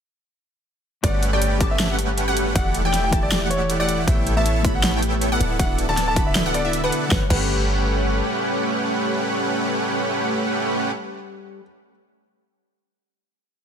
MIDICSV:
0, 0, Header, 1, 7, 480
1, 0, Start_track
1, 0, Tempo, 379747
1, 1312, Time_signature, 4, 2, 24, 8
1, 17249, End_track
2, 0, Start_track
2, 0, Title_t, "Synth pluck"
2, 0, Program_c, 0, 84
2, 1311, Note_on_c, 0, 78, 98
2, 1651, Note_off_c, 0, 78, 0
2, 1683, Note_on_c, 0, 79, 87
2, 2005, Note_off_c, 0, 79, 0
2, 2030, Note_on_c, 0, 81, 95
2, 2371, Note_off_c, 0, 81, 0
2, 2401, Note_on_c, 0, 78, 106
2, 2850, Note_off_c, 0, 78, 0
2, 2880, Note_on_c, 0, 78, 110
2, 3204, Note_off_c, 0, 78, 0
2, 3232, Note_on_c, 0, 78, 101
2, 3572, Note_off_c, 0, 78, 0
2, 3603, Note_on_c, 0, 79, 86
2, 3926, Note_off_c, 0, 79, 0
2, 3952, Note_on_c, 0, 81, 92
2, 4292, Note_off_c, 0, 81, 0
2, 4322, Note_on_c, 0, 78, 102
2, 4771, Note_off_c, 0, 78, 0
2, 4803, Note_on_c, 0, 78, 109
2, 5126, Note_off_c, 0, 78, 0
2, 5152, Note_on_c, 0, 79, 99
2, 5492, Note_off_c, 0, 79, 0
2, 5523, Note_on_c, 0, 81, 86
2, 5846, Note_off_c, 0, 81, 0
2, 5871, Note_on_c, 0, 83, 91
2, 6211, Note_off_c, 0, 83, 0
2, 6241, Note_on_c, 0, 79, 105
2, 6690, Note_off_c, 0, 79, 0
2, 6723, Note_on_c, 0, 78, 112
2, 7046, Note_off_c, 0, 78, 0
2, 7071, Note_on_c, 0, 78, 101
2, 7411, Note_off_c, 0, 78, 0
2, 7442, Note_on_c, 0, 81, 83
2, 7765, Note_off_c, 0, 81, 0
2, 7791, Note_on_c, 0, 83, 92
2, 8131, Note_off_c, 0, 83, 0
2, 8163, Note_on_c, 0, 78, 101
2, 8377, Note_off_c, 0, 78, 0
2, 8401, Note_on_c, 0, 76, 79
2, 8610, Note_off_c, 0, 76, 0
2, 8641, Note_on_c, 0, 78, 88
2, 8965, Note_off_c, 0, 78, 0
2, 8991, Note_on_c, 0, 78, 98
2, 9134, Note_off_c, 0, 78, 0
2, 9230, Note_on_c, 0, 78, 90
2, 14676, Note_off_c, 0, 78, 0
2, 17249, End_track
3, 0, Start_track
3, 0, Title_t, "Grand piano"
3, 0, Program_c, 1, 0
3, 1312, Note_on_c, 1, 74, 101
3, 1560, Note_off_c, 1, 74, 0
3, 1683, Note_on_c, 1, 74, 92
3, 2004, Note_off_c, 1, 74, 0
3, 2164, Note_on_c, 1, 76, 95
3, 2410, Note_off_c, 1, 76, 0
3, 3231, Note_on_c, 1, 78, 97
3, 3480, Note_off_c, 1, 78, 0
3, 3602, Note_on_c, 1, 79, 91
3, 3760, Note_off_c, 1, 79, 0
3, 3843, Note_on_c, 1, 79, 92
3, 4001, Note_off_c, 1, 79, 0
3, 4081, Note_on_c, 1, 74, 95
3, 4329, Note_off_c, 1, 74, 0
3, 4428, Note_on_c, 1, 73, 97
3, 4678, Note_off_c, 1, 73, 0
3, 4799, Note_on_c, 1, 74, 97
3, 5048, Note_off_c, 1, 74, 0
3, 5148, Note_on_c, 1, 76, 100
3, 5398, Note_off_c, 1, 76, 0
3, 5521, Note_on_c, 1, 76, 97
3, 5843, Note_off_c, 1, 76, 0
3, 6006, Note_on_c, 1, 78, 96
3, 6251, Note_off_c, 1, 78, 0
3, 7071, Note_on_c, 1, 78, 97
3, 7319, Note_off_c, 1, 78, 0
3, 7443, Note_on_c, 1, 81, 90
3, 7601, Note_off_c, 1, 81, 0
3, 7681, Note_on_c, 1, 81, 96
3, 7840, Note_off_c, 1, 81, 0
3, 7920, Note_on_c, 1, 76, 94
3, 8168, Note_off_c, 1, 76, 0
3, 8272, Note_on_c, 1, 74, 95
3, 8520, Note_off_c, 1, 74, 0
3, 8642, Note_on_c, 1, 71, 98
3, 8889, Note_off_c, 1, 71, 0
3, 8988, Note_on_c, 1, 71, 92
3, 9132, Note_off_c, 1, 71, 0
3, 9232, Note_on_c, 1, 71, 95
3, 14677, Note_off_c, 1, 71, 0
3, 17249, End_track
4, 0, Start_track
4, 0, Title_t, "Clean electric guitar"
4, 0, Program_c, 2, 27
4, 1299, Note_on_c, 2, 55, 82
4, 1305, Note_on_c, 2, 66, 75
4, 1311, Note_on_c, 2, 69, 75
4, 1318, Note_on_c, 2, 71, 73
4, 1325, Note_on_c, 2, 73, 88
4, 1645, Note_off_c, 2, 55, 0
4, 1648, Note_off_c, 2, 66, 0
4, 1651, Note_off_c, 2, 69, 0
4, 1655, Note_off_c, 2, 71, 0
4, 1658, Note_off_c, 2, 73, 0
4, 1669, Note_on_c, 2, 55, 81
4, 1675, Note_on_c, 2, 66, 75
4, 1683, Note_on_c, 2, 69, 75
4, 1686, Note_on_c, 2, 71, 73
4, 1694, Note_on_c, 2, 73, 90
4, 1763, Note_off_c, 2, 55, 0
4, 1766, Note_off_c, 2, 66, 0
4, 1770, Note_off_c, 2, 69, 0
4, 1772, Note_off_c, 2, 71, 0
4, 1776, Note_off_c, 2, 73, 0
4, 2003, Note_on_c, 2, 55, 81
4, 2017, Note_on_c, 2, 78, 71
4, 2030, Note_on_c, 2, 69, 72
4, 2037, Note_off_c, 2, 69, 0
4, 2042, Note_on_c, 2, 71, 72
4, 2055, Note_on_c, 2, 86, 86
4, 3191, Note_off_c, 2, 55, 0
4, 3199, Note_off_c, 2, 78, 0
4, 3211, Note_off_c, 2, 71, 0
4, 3214, Note_on_c, 2, 52, 82
4, 3215, Note_off_c, 2, 86, 0
4, 3220, Note_on_c, 2, 64, 75
4, 3225, Note_on_c, 2, 66, 75
4, 3231, Note_on_c, 2, 67, 75
4, 3236, Note_on_c, 2, 69, 74
4, 3243, Note_on_c, 2, 74, 93
4, 3563, Note_off_c, 2, 52, 0
4, 3566, Note_off_c, 2, 64, 0
4, 3568, Note_off_c, 2, 66, 0
4, 3571, Note_off_c, 2, 67, 0
4, 3574, Note_off_c, 2, 69, 0
4, 3576, Note_off_c, 2, 74, 0
4, 3587, Note_on_c, 2, 52, 84
4, 3595, Note_on_c, 2, 66, 74
4, 3597, Note_on_c, 2, 64, 77
4, 3601, Note_on_c, 2, 67, 76
4, 3607, Note_on_c, 2, 69, 74
4, 3613, Note_on_c, 2, 73, 93
4, 3682, Note_off_c, 2, 52, 0
4, 3685, Note_off_c, 2, 64, 0
4, 3687, Note_off_c, 2, 66, 0
4, 3689, Note_off_c, 2, 67, 0
4, 3693, Note_off_c, 2, 69, 0
4, 3695, Note_off_c, 2, 73, 0
4, 3925, Note_on_c, 2, 52, 79
4, 3935, Note_on_c, 2, 64, 73
4, 3944, Note_on_c, 2, 78, 77
4, 3955, Note_on_c, 2, 67, 74
4, 3965, Note_on_c, 2, 69, 77
4, 3969, Note_off_c, 2, 78, 0
4, 3974, Note_on_c, 2, 76, 90
4, 5112, Note_off_c, 2, 52, 0
4, 5117, Note_off_c, 2, 64, 0
4, 5128, Note_off_c, 2, 67, 0
4, 5132, Note_off_c, 2, 69, 0
4, 5137, Note_off_c, 2, 76, 0
4, 5139, Note_on_c, 2, 57, 83
4, 5145, Note_on_c, 2, 64, 77
4, 5151, Note_on_c, 2, 67, 78
4, 5157, Note_on_c, 2, 71, 74
4, 5164, Note_on_c, 2, 73, 92
4, 5485, Note_off_c, 2, 57, 0
4, 5488, Note_off_c, 2, 64, 0
4, 5491, Note_off_c, 2, 67, 0
4, 5494, Note_off_c, 2, 71, 0
4, 5498, Note_off_c, 2, 73, 0
4, 5510, Note_on_c, 2, 57, 84
4, 5517, Note_on_c, 2, 64, 80
4, 5523, Note_on_c, 2, 67, 76
4, 5529, Note_on_c, 2, 71, 75
4, 5536, Note_on_c, 2, 73, 92
4, 5604, Note_off_c, 2, 57, 0
4, 5607, Note_off_c, 2, 64, 0
4, 5611, Note_off_c, 2, 67, 0
4, 5614, Note_off_c, 2, 71, 0
4, 5617, Note_off_c, 2, 73, 0
4, 5847, Note_on_c, 2, 57, 82
4, 5861, Note_on_c, 2, 64, 74
4, 5874, Note_on_c, 2, 67, 73
4, 5886, Note_on_c, 2, 71, 75
4, 5898, Note_on_c, 2, 76, 93
4, 6807, Note_off_c, 2, 57, 0
4, 6813, Note_off_c, 2, 64, 0
4, 6820, Note_off_c, 2, 67, 0
4, 6826, Note_off_c, 2, 71, 0
4, 6832, Note_off_c, 2, 76, 0
4, 7060, Note_on_c, 2, 50, 83
4, 7067, Note_on_c, 2, 62, 74
4, 7074, Note_on_c, 2, 66, 77
4, 7079, Note_on_c, 2, 71, 73
4, 7087, Note_on_c, 2, 76, 90
4, 7406, Note_off_c, 2, 50, 0
4, 7409, Note_off_c, 2, 62, 0
4, 7413, Note_off_c, 2, 66, 0
4, 7415, Note_off_c, 2, 71, 0
4, 7419, Note_off_c, 2, 76, 0
4, 7428, Note_on_c, 2, 50, 81
4, 7435, Note_on_c, 2, 62, 78
4, 7442, Note_on_c, 2, 66, 80
4, 7447, Note_on_c, 2, 71, 77
4, 7456, Note_on_c, 2, 74, 89
4, 7523, Note_off_c, 2, 50, 0
4, 7526, Note_off_c, 2, 62, 0
4, 7530, Note_off_c, 2, 66, 0
4, 7533, Note_off_c, 2, 71, 0
4, 7535, Note_off_c, 2, 74, 0
4, 7769, Note_on_c, 2, 50, 82
4, 7780, Note_on_c, 2, 62, 75
4, 7794, Note_on_c, 2, 66, 77
4, 7805, Note_on_c, 2, 71, 75
4, 7819, Note_on_c, 2, 78, 92
4, 8953, Note_on_c, 2, 55, 84
4, 8954, Note_off_c, 2, 50, 0
4, 8956, Note_off_c, 2, 78, 0
4, 8960, Note_off_c, 2, 62, 0
4, 8967, Note_off_c, 2, 66, 0
4, 8971, Note_on_c, 2, 78, 81
4, 8972, Note_off_c, 2, 71, 0
4, 8990, Note_on_c, 2, 69, 80
4, 9010, Note_on_c, 2, 71, 80
4, 9024, Note_off_c, 2, 69, 0
4, 9029, Note_on_c, 2, 73, 97
4, 9113, Note_off_c, 2, 55, 0
4, 9123, Note_off_c, 2, 78, 0
4, 9144, Note_off_c, 2, 71, 0
4, 9154, Note_off_c, 2, 73, 0
4, 9194, Note_on_c, 2, 55, 85
4, 9213, Note_on_c, 2, 78, 78
4, 9231, Note_on_c, 2, 69, 79
4, 9247, Note_off_c, 2, 78, 0
4, 9252, Note_on_c, 2, 71, 77
4, 9270, Note_on_c, 2, 73, 95
4, 14658, Note_off_c, 2, 55, 0
4, 14677, Note_off_c, 2, 69, 0
4, 14687, Note_off_c, 2, 71, 0
4, 14696, Note_off_c, 2, 73, 0
4, 17249, End_track
5, 0, Start_track
5, 0, Title_t, "Supersaw synth"
5, 0, Program_c, 3, 81
5, 1309, Note_on_c, 3, 61, 81
5, 1310, Note_on_c, 3, 57, 90
5, 1310, Note_on_c, 3, 67, 85
5, 1310, Note_on_c, 3, 71, 84
5, 1310, Note_on_c, 3, 78, 101
5, 1650, Note_off_c, 3, 61, 0
5, 1651, Note_off_c, 3, 57, 0
5, 1651, Note_off_c, 3, 67, 0
5, 1651, Note_off_c, 3, 71, 0
5, 1651, Note_off_c, 3, 78, 0
5, 1683, Note_on_c, 3, 57, 79
5, 1683, Note_on_c, 3, 61, 71
5, 1683, Note_on_c, 3, 67, 70
5, 1683, Note_on_c, 3, 71, 69
5, 1683, Note_on_c, 3, 79, 85
5, 2005, Note_off_c, 3, 79, 0
5, 2006, Note_off_c, 3, 57, 0
5, 2006, Note_off_c, 3, 61, 0
5, 2006, Note_off_c, 3, 67, 0
5, 2006, Note_off_c, 3, 71, 0
5, 2030, Note_on_c, 3, 71, 76
5, 2030, Note_on_c, 3, 81, 90
5, 2371, Note_off_c, 3, 71, 0
5, 2371, Note_off_c, 3, 81, 0
5, 2399, Note_on_c, 3, 57, 93
5, 2399, Note_on_c, 3, 67, 85
5, 2399, Note_on_c, 3, 71, 84
5, 2399, Note_on_c, 3, 78, 100
5, 2400, Note_on_c, 3, 61, 86
5, 2850, Note_off_c, 3, 57, 0
5, 2850, Note_off_c, 3, 61, 0
5, 2850, Note_off_c, 3, 67, 0
5, 2850, Note_off_c, 3, 71, 0
5, 2850, Note_off_c, 3, 78, 0
5, 2880, Note_on_c, 3, 67, 95
5, 2881, Note_on_c, 3, 57, 100
5, 2881, Note_on_c, 3, 61, 91
5, 2881, Note_on_c, 3, 71, 91
5, 2881, Note_on_c, 3, 78, 108
5, 3204, Note_off_c, 3, 57, 0
5, 3204, Note_off_c, 3, 61, 0
5, 3204, Note_off_c, 3, 67, 0
5, 3204, Note_off_c, 3, 71, 0
5, 3204, Note_off_c, 3, 78, 0
5, 3229, Note_on_c, 3, 57, 87
5, 3229, Note_on_c, 3, 64, 81
5, 3229, Note_on_c, 3, 67, 85
5, 3230, Note_on_c, 3, 78, 98
5, 3570, Note_off_c, 3, 57, 0
5, 3570, Note_off_c, 3, 64, 0
5, 3570, Note_off_c, 3, 67, 0
5, 3571, Note_off_c, 3, 78, 0
5, 3603, Note_on_c, 3, 57, 80
5, 3603, Note_on_c, 3, 64, 72
5, 3603, Note_on_c, 3, 67, 73
5, 3604, Note_on_c, 3, 74, 72
5, 3604, Note_on_c, 3, 79, 88
5, 3926, Note_off_c, 3, 57, 0
5, 3926, Note_off_c, 3, 64, 0
5, 3926, Note_off_c, 3, 67, 0
5, 3926, Note_off_c, 3, 74, 0
5, 3926, Note_off_c, 3, 79, 0
5, 3951, Note_on_c, 3, 57, 80
5, 3951, Note_on_c, 3, 64, 77
5, 3951, Note_on_c, 3, 67, 77
5, 3951, Note_on_c, 3, 74, 76
5, 4291, Note_off_c, 3, 57, 0
5, 4291, Note_off_c, 3, 64, 0
5, 4291, Note_off_c, 3, 67, 0
5, 4292, Note_off_c, 3, 74, 0
5, 4324, Note_on_c, 3, 57, 93
5, 4324, Note_on_c, 3, 64, 86
5, 4324, Note_on_c, 3, 67, 82
5, 4324, Note_on_c, 3, 74, 83
5, 4325, Note_on_c, 3, 78, 106
5, 4772, Note_off_c, 3, 57, 0
5, 4772, Note_off_c, 3, 64, 0
5, 4772, Note_off_c, 3, 67, 0
5, 4772, Note_off_c, 3, 74, 0
5, 4772, Note_off_c, 3, 78, 0
5, 4804, Note_on_c, 3, 67, 92
5, 4804, Note_on_c, 3, 74, 91
5, 4804, Note_on_c, 3, 78, 109
5, 4805, Note_on_c, 3, 57, 104
5, 4805, Note_on_c, 3, 64, 92
5, 5126, Note_off_c, 3, 57, 0
5, 5126, Note_off_c, 3, 64, 0
5, 5126, Note_off_c, 3, 67, 0
5, 5126, Note_off_c, 3, 74, 0
5, 5126, Note_off_c, 3, 78, 0
5, 5151, Note_on_c, 3, 69, 84
5, 5152, Note_on_c, 3, 59, 89
5, 5152, Note_on_c, 3, 64, 82
5, 5152, Note_on_c, 3, 73, 84
5, 5491, Note_off_c, 3, 69, 0
5, 5492, Note_off_c, 3, 59, 0
5, 5492, Note_off_c, 3, 64, 0
5, 5492, Note_off_c, 3, 73, 0
5, 5523, Note_on_c, 3, 59, 78
5, 5523, Note_on_c, 3, 69, 75
5, 5523, Note_on_c, 3, 73, 72
5, 5523, Note_on_c, 3, 81, 88
5, 5524, Note_on_c, 3, 64, 72
5, 5845, Note_off_c, 3, 59, 0
5, 5845, Note_off_c, 3, 69, 0
5, 5845, Note_off_c, 3, 73, 0
5, 5846, Note_off_c, 3, 64, 0
5, 5846, Note_off_c, 3, 81, 0
5, 5871, Note_on_c, 3, 59, 82
5, 5871, Note_on_c, 3, 69, 78
5, 5871, Note_on_c, 3, 73, 77
5, 5871, Note_on_c, 3, 83, 91
5, 5872, Note_on_c, 3, 64, 78
5, 6211, Note_off_c, 3, 59, 0
5, 6211, Note_off_c, 3, 69, 0
5, 6211, Note_off_c, 3, 83, 0
5, 6212, Note_off_c, 3, 64, 0
5, 6212, Note_off_c, 3, 73, 0
5, 6243, Note_on_c, 3, 59, 97
5, 6243, Note_on_c, 3, 64, 85
5, 6243, Note_on_c, 3, 69, 87
5, 6243, Note_on_c, 3, 79, 104
5, 6244, Note_on_c, 3, 73, 86
5, 6692, Note_off_c, 3, 59, 0
5, 6692, Note_off_c, 3, 64, 0
5, 6692, Note_off_c, 3, 69, 0
5, 6692, Note_off_c, 3, 73, 0
5, 6692, Note_off_c, 3, 79, 0
5, 6723, Note_on_c, 3, 74, 93
5, 6724, Note_on_c, 3, 59, 101
5, 6724, Note_on_c, 3, 64, 92
5, 6724, Note_on_c, 3, 69, 95
5, 6725, Note_on_c, 3, 78, 111
5, 7046, Note_off_c, 3, 59, 0
5, 7046, Note_off_c, 3, 64, 0
5, 7046, Note_off_c, 3, 69, 0
5, 7046, Note_off_c, 3, 74, 0
5, 7046, Note_off_c, 3, 78, 0
5, 7073, Note_on_c, 3, 59, 92
5, 7412, Note_off_c, 3, 59, 0
5, 7443, Note_on_c, 3, 59, 77
5, 7443, Note_on_c, 3, 64, 72
5, 7443, Note_on_c, 3, 69, 70
5, 7443, Note_on_c, 3, 74, 72
5, 7443, Note_on_c, 3, 81, 87
5, 7766, Note_off_c, 3, 59, 0
5, 7766, Note_off_c, 3, 64, 0
5, 7766, Note_off_c, 3, 69, 0
5, 7766, Note_off_c, 3, 74, 0
5, 7766, Note_off_c, 3, 81, 0
5, 7790, Note_on_c, 3, 74, 76
5, 7791, Note_on_c, 3, 59, 85
5, 7792, Note_on_c, 3, 64, 77
5, 8131, Note_off_c, 3, 74, 0
5, 8132, Note_off_c, 3, 59, 0
5, 8132, Note_off_c, 3, 64, 0
5, 8165, Note_on_c, 3, 59, 92
5, 8165, Note_on_c, 3, 64, 85
5, 8165, Note_on_c, 3, 69, 86
5, 8165, Note_on_c, 3, 74, 85
5, 8165, Note_on_c, 3, 78, 105
5, 8378, Note_off_c, 3, 59, 0
5, 8378, Note_off_c, 3, 64, 0
5, 8378, Note_off_c, 3, 69, 0
5, 8378, Note_off_c, 3, 74, 0
5, 8378, Note_off_c, 3, 78, 0
5, 8404, Note_on_c, 3, 59, 81
5, 8404, Note_on_c, 3, 64, 73
5, 8404, Note_on_c, 3, 69, 74
5, 8405, Note_on_c, 3, 74, 73
5, 8405, Note_on_c, 3, 76, 88
5, 8612, Note_off_c, 3, 59, 0
5, 8612, Note_off_c, 3, 64, 0
5, 8612, Note_off_c, 3, 69, 0
5, 8612, Note_off_c, 3, 74, 0
5, 8613, Note_off_c, 3, 76, 0
5, 8646, Note_on_c, 3, 59, 81
5, 8646, Note_on_c, 3, 64, 70
5, 8646, Note_on_c, 3, 78, 88
5, 8647, Note_on_c, 3, 69, 73
5, 8647, Note_on_c, 3, 74, 72
5, 8967, Note_off_c, 3, 59, 0
5, 8967, Note_off_c, 3, 64, 0
5, 8967, Note_off_c, 3, 69, 0
5, 8967, Note_off_c, 3, 74, 0
5, 8967, Note_off_c, 3, 78, 0
5, 8994, Note_on_c, 3, 57, 88
5, 8994, Note_on_c, 3, 61, 81
5, 8994, Note_on_c, 3, 67, 80
5, 8994, Note_on_c, 3, 78, 101
5, 8995, Note_on_c, 3, 71, 78
5, 9135, Note_off_c, 3, 61, 0
5, 9135, Note_off_c, 3, 78, 0
5, 9136, Note_off_c, 3, 57, 0
5, 9136, Note_off_c, 3, 67, 0
5, 9136, Note_off_c, 3, 71, 0
5, 9231, Note_on_c, 3, 71, 79
5, 9232, Note_on_c, 3, 57, 86
5, 9232, Note_on_c, 3, 61, 78
5, 9232, Note_on_c, 3, 67, 81
5, 9232, Note_on_c, 3, 78, 100
5, 13792, Note_off_c, 3, 57, 0
5, 13792, Note_off_c, 3, 71, 0
5, 13792, Note_off_c, 3, 78, 0
5, 13793, Note_off_c, 3, 61, 0
5, 13793, Note_off_c, 3, 67, 0
5, 17249, End_track
6, 0, Start_track
6, 0, Title_t, "808-style bass"
6, 0, Program_c, 4, 38
6, 1310, Note_on_c, 4, 31, 91
6, 3209, Note_off_c, 4, 31, 0
6, 3228, Note_on_c, 4, 28, 93
6, 5128, Note_off_c, 4, 28, 0
6, 5151, Note_on_c, 4, 33, 92
6, 6810, Note_off_c, 4, 33, 0
6, 6831, Note_on_c, 4, 26, 91
6, 8730, Note_off_c, 4, 26, 0
6, 8991, Note_on_c, 4, 31, 101
6, 9134, Note_off_c, 4, 31, 0
6, 9231, Note_on_c, 4, 31, 96
6, 10381, Note_off_c, 4, 31, 0
6, 17249, End_track
7, 0, Start_track
7, 0, Title_t, "Drums"
7, 1310, Note_on_c, 9, 36, 115
7, 1310, Note_on_c, 9, 42, 86
7, 1310, Note_on_c, 9, 51, 49
7, 1436, Note_off_c, 9, 36, 0
7, 1437, Note_off_c, 9, 42, 0
7, 1437, Note_off_c, 9, 51, 0
7, 1549, Note_on_c, 9, 42, 68
7, 1676, Note_off_c, 9, 42, 0
7, 1790, Note_on_c, 9, 42, 85
7, 1916, Note_off_c, 9, 42, 0
7, 2029, Note_on_c, 9, 42, 67
7, 2030, Note_on_c, 9, 36, 110
7, 2155, Note_off_c, 9, 42, 0
7, 2156, Note_off_c, 9, 36, 0
7, 2269, Note_on_c, 9, 38, 118
7, 2269, Note_on_c, 9, 42, 82
7, 2269, Note_on_c, 9, 51, 39
7, 2395, Note_off_c, 9, 38, 0
7, 2395, Note_off_c, 9, 42, 0
7, 2395, Note_off_c, 9, 51, 0
7, 2510, Note_on_c, 9, 42, 68
7, 2636, Note_off_c, 9, 42, 0
7, 2750, Note_on_c, 9, 42, 82
7, 2877, Note_off_c, 9, 42, 0
7, 2991, Note_on_c, 9, 42, 72
7, 3117, Note_off_c, 9, 42, 0
7, 3230, Note_on_c, 9, 36, 121
7, 3231, Note_on_c, 9, 42, 83
7, 3231, Note_on_c, 9, 51, 47
7, 3356, Note_off_c, 9, 36, 0
7, 3357, Note_off_c, 9, 42, 0
7, 3357, Note_off_c, 9, 51, 0
7, 3469, Note_on_c, 9, 42, 70
7, 3596, Note_off_c, 9, 42, 0
7, 3712, Note_on_c, 9, 38, 38
7, 3712, Note_on_c, 9, 42, 83
7, 3838, Note_off_c, 9, 38, 0
7, 3838, Note_off_c, 9, 42, 0
7, 3950, Note_on_c, 9, 36, 113
7, 3952, Note_on_c, 9, 42, 69
7, 4077, Note_off_c, 9, 36, 0
7, 4078, Note_off_c, 9, 42, 0
7, 4192, Note_on_c, 9, 38, 122
7, 4192, Note_on_c, 9, 42, 80
7, 4192, Note_on_c, 9, 51, 37
7, 4318, Note_off_c, 9, 38, 0
7, 4318, Note_off_c, 9, 42, 0
7, 4318, Note_off_c, 9, 51, 0
7, 4433, Note_on_c, 9, 42, 68
7, 4559, Note_off_c, 9, 42, 0
7, 4672, Note_on_c, 9, 42, 79
7, 4798, Note_off_c, 9, 42, 0
7, 4912, Note_on_c, 9, 42, 70
7, 5038, Note_off_c, 9, 42, 0
7, 5152, Note_on_c, 9, 36, 126
7, 5153, Note_on_c, 9, 42, 81
7, 5153, Note_on_c, 9, 51, 48
7, 5278, Note_off_c, 9, 36, 0
7, 5280, Note_off_c, 9, 42, 0
7, 5280, Note_off_c, 9, 51, 0
7, 5392, Note_on_c, 9, 42, 66
7, 5518, Note_off_c, 9, 42, 0
7, 5633, Note_on_c, 9, 42, 78
7, 5759, Note_off_c, 9, 42, 0
7, 5872, Note_on_c, 9, 36, 115
7, 5872, Note_on_c, 9, 42, 65
7, 5998, Note_off_c, 9, 36, 0
7, 5998, Note_off_c, 9, 42, 0
7, 6112, Note_on_c, 9, 38, 127
7, 6112, Note_on_c, 9, 42, 79
7, 6112, Note_on_c, 9, 51, 38
7, 6238, Note_off_c, 9, 38, 0
7, 6238, Note_off_c, 9, 42, 0
7, 6238, Note_off_c, 9, 51, 0
7, 6351, Note_on_c, 9, 42, 66
7, 6478, Note_off_c, 9, 42, 0
7, 6592, Note_on_c, 9, 42, 78
7, 6718, Note_off_c, 9, 42, 0
7, 6832, Note_on_c, 9, 42, 65
7, 6959, Note_off_c, 9, 42, 0
7, 7072, Note_on_c, 9, 36, 125
7, 7072, Note_on_c, 9, 42, 80
7, 7072, Note_on_c, 9, 51, 48
7, 7198, Note_off_c, 9, 36, 0
7, 7198, Note_off_c, 9, 42, 0
7, 7198, Note_off_c, 9, 51, 0
7, 7312, Note_on_c, 9, 42, 66
7, 7439, Note_off_c, 9, 42, 0
7, 7551, Note_on_c, 9, 38, 40
7, 7551, Note_on_c, 9, 42, 79
7, 7678, Note_off_c, 9, 38, 0
7, 7678, Note_off_c, 9, 42, 0
7, 7791, Note_on_c, 9, 36, 112
7, 7791, Note_on_c, 9, 42, 65
7, 7917, Note_off_c, 9, 42, 0
7, 7918, Note_off_c, 9, 36, 0
7, 8031, Note_on_c, 9, 38, 124
7, 8031, Note_on_c, 9, 42, 75
7, 8031, Note_on_c, 9, 51, 39
7, 8157, Note_off_c, 9, 38, 0
7, 8157, Note_off_c, 9, 42, 0
7, 8157, Note_off_c, 9, 51, 0
7, 8271, Note_on_c, 9, 42, 62
7, 8397, Note_off_c, 9, 42, 0
7, 8511, Note_on_c, 9, 42, 74
7, 8637, Note_off_c, 9, 42, 0
7, 8752, Note_on_c, 9, 42, 66
7, 8878, Note_off_c, 9, 42, 0
7, 8991, Note_on_c, 9, 36, 116
7, 8991, Note_on_c, 9, 38, 88
7, 9118, Note_off_c, 9, 36, 0
7, 9118, Note_off_c, 9, 38, 0
7, 9231, Note_on_c, 9, 36, 117
7, 9234, Note_on_c, 9, 49, 89
7, 9358, Note_off_c, 9, 36, 0
7, 9360, Note_off_c, 9, 49, 0
7, 17249, End_track
0, 0, End_of_file